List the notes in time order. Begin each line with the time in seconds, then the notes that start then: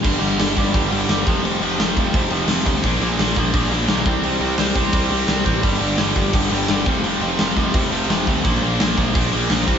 0.02 G1 G2 D3 G3, kick, crash
0.19 G1 G2 D3 G3, crash
0.38 G1 G2 D3 G3, snare, crash
0.57 G1 G2 D3 G3, kick, crash
0.74 G1 G2 D3 G3, kick, crash
0.91 G1 G2 D3 G3, crash
1.09 G1 G2 D3 G3, snare, crash
1.27 F1 F2 C3 F3, kick, crash
1.43 F1 F2 C3 F3, crash
1.60 F1 F2 C3 F3, crash
1.78 F1 F2 C3 F3, snare, crash
1.96 F1 F2 C3 F3, kick, crash
2.14 F1 F2 C3 F3, kick, crash
2.31 F1 F2 C3 F3, crash
2.48 F1 F2 C3 F3, snare, crash
2.66 D2 F2 C3 F3, kick, crash
2.84 A#1 A#2 F3 A#3, kick, crash
3.00 A#1 A#2 F3 A#3, crash
3.17 A#1 A#2 F3 A#3, snare, crash
3.36 A#1 A#2 F3 A#3, kick, crash
3.54 A#1 A#2 F3 A#3, kick, crash
3.71 A#1 A#2 F3 A#3, crash
3.88 B1 A#2 F3 A#3, snare, crash
4.05 C2 C3 G3 C4, kick, crash
4.23 C2 C3 G3 C4, crash
4.40 C2 C3 G3 C4, crash
4.58 C2 C3 G3 C4, snare, crash
4.75 C2 C3 G3 C4, kick, crash
4.92 C2 C3 G3 C4, kick, crash
5.10 C2 C3 G3 C4, crash
5.28 C2 C3 G3 C4, snare, crash
5.44 A1 C3 G3 C4, kick, crash
5.62 G1 G2 D3 G3, kick, crash
5.79 G1 G2 D3 G3, crash
5.97 G1 G2 D3 G3, snare, crash
6.15 G1 G2 D3 G3, kick, crash
6.33 G1 G2 D3 G3, kick, crash
6.50 G1 G2 D3 G3, crash
6.68 G1 G2 D3 G3, snare, crash
6.86 F1 F2 C3 F3, kick, crash
7.04 F1 F2 C3 F3, crash
7.21 F1 F2 C3 F3, crash
7.39 F1 F2 C3 F3, snare, crash
7.56 F1 F2 C3 F3, kick, crash
7.74 F1 F2 C3 F3, kick, crash
7.90 F1 F2 C3 F3, crash
8.09 F1 F2 C3 F3, snare, crash
8.27 D2 F2 C3 F3, kick, crash
8.44 A#1 A#2 F3 A#3, kick, crash
8.62 A#1 A#2 F3 A#3, crash
8.79 A#1 A#2 F3 A#3, snare, crash
8.97 A#1 A#2 F3 A#3, kick, crash
9.14 A#1 A#2 F3 A#3, kick, crash
9.31 A#1 A#2 F3 A#3, crash
9.49 A#1 A#2 F3 A#3, snare, crash
9.67 C2 C3 G3 C4, kick, crash